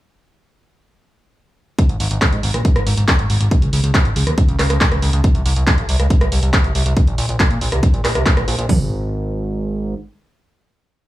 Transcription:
1.79 kick, closed hi-hat
1.89 analog synth bass G#1, closed hi-hat
2.00 analog synth bass G#1, open hi-hat
2.11 analog synth bass G#1, closed hi-hat
2.22 kick, clap, closed hi-hat
2.33 analog synth bass G#2, closed hi-hat
2.43 analog synth bass G#1, open hi-hat
2.54 analog synth bass A#1, cross-stick, closed hi-hat
2.65 kick, closed hi-hat
2.76 analog synth bass G#1, cross-stick, closed hi-hat
2.87 analog synth bass G#1, open hi-hat
2.97 analog synth bass G#1, closed hi-hat
3.08 kick, clap, closed hi-hat
3.19 analog synth bass G#1, closed hi-hat
3.30 analog synth bass G#1, open hi-hat
3.41 analog synth bass G#1, closed hi-hat
3.51 kick, closed hi-hat
3.62 analog synth bass C#2, closed hi-hat
3.73 analog synth bass C#2, open hi-hat
3.84 analog synth bass C#2, closed hi-hat
3.95 kick, clap, closed hi-hat
4.05 analog synth bass G#1, closed hi-hat
4.16 analog synth bass C#2, open hi-hat
4.27 analog synth bass D#2, cross-stick, closed hi-hat
4.38 kick, closed hi-hat
4.49 analog synth bass C#2, closed hi-hat
4.59 analog synth bass C#2, cross-stick, clap, open hi-hat
4.70 analog synth bass C#2, cross-stick, closed hi-hat
4.81 kick, clap, closed hi-hat
4.92 analog synth bass C#2, cross-stick, closed hi-hat
5.02 analog synth bass C#2, open hi-hat
5.13 analog synth bass C#2, closed hi-hat
5.24 kick, closed hi-hat
5.35 analog synth bass C2, closed hi-hat
5.46 analog synth bass C2, open hi-hat
5.56 analog synth bass C2, closed hi-hat
5.67 kick, clap, closed hi-hat
5.78 analog synth bass G1, closed hi-hat
5.89 analog synth bass C2, open hi-hat
6.00 analog synth bass C#2, cross-stick, closed hi-hat
6.10 kick, closed hi-hat
6.21 analog synth bass C2, cross-stick, closed hi-hat
6.32 analog synth bass C2, open hi-hat
6.43 analog synth bass C2, closed hi-hat
6.53 kick, clap, closed hi-hat
6.64 analog synth bass C2, closed hi-hat
6.75 analog synth bass C2, open hi-hat
6.86 analog synth bass C2, closed hi-hat
6.97 kick, closed hi-hat
7.07 analog synth bass A#1, closed hi-hat
7.18 analog synth bass A#1, open hi-hat
7.29 analog synth bass A#1, closed hi-hat
7.40 kick, clap, closed hi-hat
7.51 analog synth bass A#2, closed hi-hat
7.61 analog synth bass A#1, open hi-hat
7.72 analog synth bass C2, cross-stick, closed hi-hat
7.83 kick, closed hi-hat
7.94 analog synth bass A#1, closed hi-hat
8.05 analog synth bass A#1, cross-stick, clap, open hi-hat
8.15 analog synth bass C2, cross-stick, closed hi-hat
8.26 kick, clap, closed hi-hat
8.37 analog synth bass A#1, cross-stick, closed hi-hat
8.48 analog synth bass A#1, open hi-hat
8.58 analog synth bass A#1, closed hi-hat
8.69 analog synth bass G#1, kick, floor tom, open hi-hat

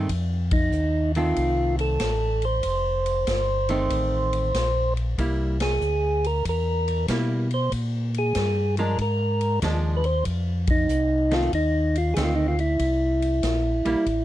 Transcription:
0.09 tonewheel organ F2, kick, ride
0.51 tonewheel organ D#4, kick, ride
0.72 tonewheel organ D#2, hi-hat pedal
1.15 hollow-body jazz guitar D#3 A3 C4, tonewheel organ F4, ride
1.36 tonewheel organ C2, kick, ride
1.79 tonewheel organ A4, ride
2.00 tonewheel organ A1, kick, snare, hi-hat pedal, ride
2.42 tonewheel organ C5, ride
2.63 tonewheel organ F1, kick, ride
3.06 ride
3.27 tonewheel organ G1, kick, snare, hi-hat pedal, ride
3.69 hollow-body jazz guitar D#3 A3 C4, ride
3.90 tonewheel organ A1, kick, ride
4.33 ride
4.54 tonewheel organ A#1, kick, snare, hi-hat pedal, ride
4.97 ride
5.18 tonewheel organ C2, hollow-body jazz guitar G3 A#3 E4, kick, ride
5.60 tonewheel organ G#4, snare, ride
5.81 tonewheel organ D2, hi-hat pedal
6.24 tonewheel organ A#4, ride
6.45 tonewheel organ E2 A#4, kick, ride
6.88 ride
7.08 tonewheel organ B2, hollow-body jazz guitar G3 A#3 E4, kick, snare, hi-hat pedal, ride
7.51 tonewheel organ C5, ride
7.72 tonewheel organ A#2, kick, ride
8.14 ride
8.18 tonewheel organ G#4
8.35 tonewheel organ G2, kick, snare, hi-hat pedal, ride
8.77 hollow-body jazz guitar F3 G#3 D4, tonewheel organ A#4, ride
8.98 tonewheel organ G#2 A#4, kick, ride
9.41 ride
9.62 tonewheel organ D#2, hollow-body jazz guitar F3 G#3 D4, kick, snare, hi-hat pedal, ride
9.97 tonewheel organ B4
10.04 tonewheel organ C5, ride
10.25 tonewheel organ F2, kick, ride
10.67 tonewheel organ D#4, kick, ride
10.88 tonewheel organ C2, hi-hat pedal
11.31 hollow-body jazz guitar D#3 A3 C4, tonewheel organ F4, snare, ride
11.53 tonewheel organ D#2 D#4, kick, ride
11.95 tonewheel organ F4, ride
12.14 tonewheel organ D2 G#4, hollow-body jazz guitar D#3 A3, kick, snare, hi-hat pedal, ride
12.18 hollow-body jazz guitar C4
12.24 tonewheel organ F4
12.35 tonewheel organ D#4
12.48 tonewheel organ F4
12.59 tonewheel organ E4, ride
12.79 tonewheel organ C2, kick, ride
13.22 ride
13.43 tonewheel organ A#1, kick, snare, hi-hat pedal, ride
13.85 tonewheel organ A#1, hollow-body jazz guitar G3 A#3 E4, ride
14.06 tonewheel organ A1, kick, ride

